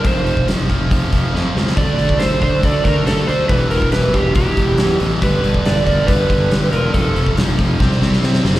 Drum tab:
HH |o-o-o-o-o-o-----|o-o-o-o-o-o-o-o-|o-o-o-o-o-o-o-o-|o-o-o-o-o-o-o-o-|
SD |----o-------o-oo|----o-------o---|----o-------o---|----o-------o---|
BD |o--o--o-o-o-----|o--o--o-o-o-----|o--o--o-o-o-----|o--o--o-o-o-----|

HH |o-o-o-o---------|
SD |----o---oooooooo|
BD |o--o--o-o-------|